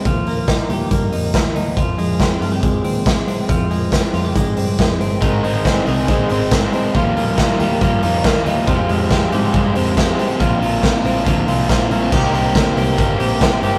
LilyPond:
<<
  \new Staff \with { instrumentName = "Clean electric guitar" } { \time 4/4 \key ees \major \tempo 4 = 139 f8 bes8 ees'8 g'8 bes8 ees'8 bes8 ees'8 | f8 aes8 c'8 f'16 g'16 aes8 c'8 aes8 c'8 | f8 aes8 c'8 f'16 g'16 aes8 c'8 aes8 c'8 | ees8 aes8 c'8 aes'8 aes8 c'8 aes8 c'8 |
f8 bes8 ees'8 g'8 bes8 ees'8 bes8 ees'8 | f8 aes8 c'8 g'8 aes8 c'8 aes8 c'8 | f8 f8 c'8 c'16 d'16 f8 c'8 f8 bes16 c'16 | <ees g'>8 c'8 bes8 c'8 bes8 g'8 c'8 g'8 | }
  \new Staff \with { instrumentName = "Overdriven electric guitar" } { \time 4/4 \key ees \major r1 | r1 | r1 | <aes, ees aes c' ees'>8 <aes c' ees'>8 <aes, ees aes c' ees'>8 <aes c' ees'>8 <ees aes c' ees'>8 <aes c' ees'>8 <aes, ees aes c' ees'>8 <aes c' ees'>8 |
<ees g bes f'>8 <g bes f'>8 <ees g bes f'>8 <g bes f'>8 <ees g bes f'>8 <g bes f'>8 <ees g bes f'>8 <g bes f'>8 | <f aes c' g'>8 <aes c' g'>8 <f aes c' g'>8 <aes c' g'>8 <f aes c' g'>8 <aes c' g'>8 <f aes c' g'>8 <aes c' g'>8 | <bes, d bes c' f'>8 <bes c' f'>8 <bes, d bes c' f'>8 <bes c' f'>8 <d bes c' f'>8 <bes c' f'>8 <bes, d bes c' f'>8 <bes c' f'>8 | <c ees bes c' g'>8 <bes c' g'>8 <c ees bes c' g'>8 <bes c' g'>8 <ees bes c' g'>8 <bes c' g'>8 <c ees bes c' g'>8 <bes c' g'>8 | }
  \new Staff \with { instrumentName = "Picked electric bass" } { \clef bass \time 4/4 \key ees \major ees,4~ ees,16 r16 ees,8 g,8 f,8 ees,8 ees,8 | f,8 f,4 g,8 f,8 ees,4 r8 | f,4~ f,16 r16 f,8 aes,8 g,8 f,8 g,,8 | aes,,8 aes,,4 c,8 bes,,8 aes,,4 r8 |
ees,4~ ees,16 r16 ees,8 g,8 f,8 ees,8 ees,8 | f,8 f,4 aes,8 g,8 f,4 r8 | bes,,4~ bes,,16 r16 bes,,8 d,8 c,8 bes,,8 bes,,8 | c,8 c,8 d,8 c,8 g,,8 bes,,4 g,,8 | }
  \new DrumStaff \with { instrumentName = "Drums" } \drummode { \time 4/4 <hh bd>8 hho8 <hh bd sn>8 hho8 <hh bd>8 hho8 <hh bd sn>8 hho8 | <hh bd>8 hho8 <hh bd sn>8 hho8 <hh bd>8 hho8 <hh bd sn>8 hho8 | <hh bd>8 hho8 <hh bd sn>8 hho8 <hh bd>8 hho8 <hh bd sn>8 hho8 | <hh bd>8 hho8 <hh bd sn>8 hho8 <hh bd>8 hho8 <hh bd sn>8 hho8 |
<hh bd>8 hho8 <hh bd sn>8 hho8 <hh bd>8 hho8 <hh bd sn>8 hho8 | <hh bd>8 hho8 <hh bd sn>8 hho8 <hh bd>8 hho8 <hh bd sn>8 hho8 | <hh bd>8 hho8 <hh bd sn>8 hho8 <hh bd>8 hho8 <hh bd sn>8 hho8 | <cymc bd>8 hho8 <hh bd sn>8 hho8 <hh bd>8 hho8 <hh bd sn>8 hho8 | }
>>